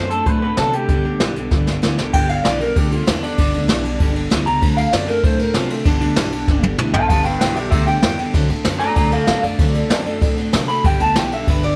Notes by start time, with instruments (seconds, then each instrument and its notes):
Already playing: upright bass F#2, steel-string acoustic guitar D3 F#3 C4 D4, clean electric guitar C5
0.10 clean electric guitar D3 A3 A4, steel-string acoustic guitar C4 D4 A4, closed hi-hat
0.26 upright bass A2, clean electric guitar D3 A3 B4, steel-string acoustic guitar F#3 C4 D4 A4, kick, closed hi-hat
0.42 clean electric guitar D3 A3 B4, steel-string acoustic guitar C4 D4 A4
0.57 upright bass C3, steel-string acoustic guitar D3 F#3 C4 D4 A4, clean electric guitar D3 B3 A4, snare, closed hi-hat
0.73 clean electric guitar D3 A3 G4, steel-string acoustic guitar C4 D4 A4, closed hi-hat
0.88 upright bass G1, steel-string acoustic guitar G2 D3 G3 B3 D4 G4, clean electric guitar G2 D3, kick, closed hi-hat
1.04 upright bass D2, clean electric guitar G2 D3, steel-string acoustic guitar G3 B3 D4 G4
1.20 upright bass B1, steel-string acoustic guitar G2 D3 G3 B3 D4 G4, clean electric guitar G2 E3, snare, closed hi-hat
1.36 clean electric guitar G2 D3, steel-string acoustic guitar G3 B3 D4 G4, closed hi-hat
1.51 upright bass G1, clean electric guitar G2 D3, steel-string acoustic guitar G3 B3 D4 G4, kick, snare
1.67 clean electric guitar G2 D3, steel-string acoustic guitar G3 B3 D4 G4, snare
1.82 upright bass D2, steel-string acoustic guitar G2 D3 G3 B3 D4 G4, clean electric guitar G2 E3, snare
1.98 upright bass B1, clean electric guitar G2 D3, steel-string acoustic guitar G3 B3 D4 G4, snare
2.13 upright bass G1, steel-string acoustic guitar G2 D3 G3 B3 D4 G4, clean electric guitar G2 D3 G5, kick, crash
2.29 clean electric guitar G2 D3 F5, steel-string acoustic guitar G3 B3 D4 G4, ride
2.44 upright bass B1, steel-string acoustic guitar G2 D3 G3 B3 D4 G4, clean electric guitar G2 E3 D5, snare, ride
2.60 clean electric guitar G2 D3 A#4, steel-string acoustic guitar G3 B3 D4 G4, ride
2.76 upright bass D2, clean electric guitar G2 D3 G4, steel-string acoustic guitar G3 B3 D4 G4, kick, ride
2.92 clean electric guitar G2 D3 F4, steel-string acoustic guitar G3 B3 D4 G4, ride
3.07 upright bass E2, steel-string acoustic guitar G2 D3 G3 B3 D4 G4, clean electric guitar G2 E3 D4, snare, ride
3.22 clean electric guitar G2 D3 D4, steel-string acoustic guitar G3 B3 D4 G4, ride
3.38 upright bass G1, steel-string acoustic guitar G2 D3 G3 B3 D4 G4, clean electric guitar G2 D3, kick, ride
3.53 upright bass D2, clean electric guitar G2 D3, steel-string acoustic guitar G3 B3 D4 G4, ride
3.68 upright bass B1, steel-string acoustic guitar G2 D3 G3 B3 D4 G4, clean electric guitar G2 E3, snare, ride
3.83 clean electric guitar G2 D3, steel-string acoustic guitar G3 B3 D4 G4, ride
3.99 upright bass G1, clean electric guitar G2 D3, steel-string acoustic guitar G3 B3 D4 G4, kick, ride
4.15 clean electric guitar G2 D3, steel-string acoustic guitar G3 B3 D4 G4, ride
4.30 upright bass D2, steel-string acoustic guitar G2 D3 G3 B3 D4 G4, clean electric guitar G2 E3, snare, ride
4.45 upright bass C#2, clean electric guitar G2 D3 A#5, steel-string acoustic guitar G3 B3 D4 G4, ride
4.61 upright bass D2, steel-string acoustic guitar D3 F#3 C4 D4 A4, clean electric guitar D3 A3, kick, ride
4.77 clean electric guitar D3 A3 F5, steel-string acoustic guitar C4 D4 A4, ride
4.92 upright bass F#2, steel-string acoustic guitar D3 F#3 C4 D4 A4, clean electric guitar B3 D5, snare, ride
5.08 clean electric guitar D3 A3 A#4, steel-string acoustic guitar C4 D4 A4, ride
5.23 upright bass A2, clean electric guitar D3 A3 C5, steel-string acoustic guitar F#3 C4 D4 A4, kick, ride
5.39 clean electric guitar D3 A3 A#4, steel-string acoustic guitar C4 D4 A4, ride
5.54 upright bass C3, clean electric guitar D3 B3 F4, steel-string acoustic guitar D3 F#3 C4 D4 A4, snare, ride
5.69 clean electric guitar D3 A3, steel-string acoustic guitar C4 D4 A4, ride
5.85 upright bass G1, steel-string acoustic guitar G2 D3 G3 B3 D4 G4, clean electric guitar G2 D3 D4, kick, ride
6.00 upright bass D2, clean electric guitar G2 D3 D4, steel-string acoustic guitar G3 B3 D4 G4, ride
6.16 upright bass B1, steel-string acoustic guitar G2 D3 G3 B3 D4 G4, clean electric guitar G2 E3, snare, ride
6.32 clean electric guitar G2 D3, steel-string acoustic guitar G3 B3 D4 G4, ride
6.48 upright bass G1, clean electric guitar G2 D3, steel-string acoustic guitar G3 B3 D4 G4, kick, snare
6.63 clean electric guitar G2 D3, steel-string acoustic guitar G3 B3 D4 G4, high tom
6.78 upright bass D2, steel-string acoustic guitar G2 D3 G3 B3 D4 G4, clean electric guitar G2 E3, mid tom
6.93 upright bass B1, clean electric guitar G2 D3 F5 A5, steel-string acoustic guitar B3 D4 G4, floor tom
7.08 upright bass G1, steel-string acoustic guitar G2 D3 G3 B3 D4 G4, clean electric guitar G2 D3 F5 A5, kick, ride
7.24 clean electric guitar G2 D3 B4 G5, steel-string acoustic guitar B3 D4 G4, ride
7.29 steel-string acoustic guitar G3
7.40 upright bass B1, clean electric guitar G2 E3 B4 G5, steel-string acoustic guitar G2 D3 G3 B3 D4 G4, snare, ride
7.55 clean electric guitar G2 D3 G4 E5, steel-string acoustic guitar B3 D4 G4, ride
7.59 steel-string acoustic guitar G3
7.70 upright bass D2, clean electric guitar G2 D3 G4 E5, steel-string acoustic guitar G3 B3 D4 G4, kick, ride
7.87 clean electric guitar G2 D3 G5, steel-string acoustic guitar G3 B3 D4 G4, ride
8.02 upright bass E2, clean electric guitar G2 E3, steel-string acoustic guitar G2 D3 G3 B3 D4 G4, snare, ride
8.18 clean electric guitar G2 D3, steel-string acoustic guitar G3 B3 D4 G4, ride
8.34 upright bass D2, clean electric guitar D3 A3, steel-string acoustic guitar D3 F#3 C4 D4 A4, kick, ride
8.49 upright bass A2, clean electric guitar D3 A3, steel-string acoustic guitar C4 D4 A4, ride
8.65 upright bass F#2, steel-string acoustic guitar D3 F#3 C4 D4 A4, clean electric guitar D3 B3, snare, ride
8.79 clean electric guitar D3 A3 D5 A#5, steel-string acoustic guitar D4 A4, ride
8.83 steel-string acoustic guitar C4
8.96 upright bass D2, clean electric guitar D3 A3 D5 A#5, steel-string acoustic guitar F#3 C4 D4 A4, kick, ride
9.11 clean electric guitar D3 A3 A4 F5, steel-string acoustic guitar C4 D4 A4, ride
9.27 upright bass A2, clean electric guitar D3 B3 A4 F5, steel-string acoustic guitar D3 F#3 C4 D4 A4, snare, ride
9.43 upright bass F#2, clean electric guitar D3 A3 D5, steel-string acoustic guitar C4 D4 A4, ride
9.59 upright bass D2, clean electric guitar D3 A3, steel-string acoustic guitar D3 F#3 C4 D4 A4, kick, ride
9.74 clean electric guitar D3 A3, steel-string acoustic guitar C4 D4 A4, ride
9.89 upright bass F#2, steel-string acoustic guitar D3 F#3 C4 D4 A4, clean electric guitar D3 B3, snare, ride
10.06 clean electric guitar D3 A3, steel-string acoustic guitar C4 D4 A4, ride
10.21 upright bass A2, clean electric guitar D3 A3, steel-string acoustic guitar F#3 C4 D4 A4, kick, ride
10.36 clean electric guitar D3 A3, steel-string acoustic guitar C4 D4 A4, ride
10.53 upright bass C3, steel-string acoustic guitar D3 F#3 C4 D4 A4, clean electric guitar D3 B3, snare, ride
10.68 clean electric guitar D3 A3 B5, steel-string acoustic guitar D4 A4, ride
10.84 upright bass G1, steel-string acoustic guitar G2 D3 G3 B3 D4 G4, clean electric guitar G2 D3 G5, kick, ride
11.00 upright bass D2, clean electric guitar G2 D3 A5, steel-string acoustic guitar G3 B3 D4 G4, ride
11.16 upright bass B1, clean electric guitar G2 E3 G5, steel-string acoustic guitar G2 D3 G3 B3 D4 G4, snare, ride
11.31 clean electric guitar G2 D3 E5, steel-string acoustic guitar G3 B3 D4 G4, ride
11.46 upright bass G1, clean electric guitar G2 D3 B4, steel-string acoustic guitar G3 B3 D4 G4, kick, ride
11.63 clean electric guitar G2 D3 D5, steel-string acoustic guitar G3 B3 D4 G4, ride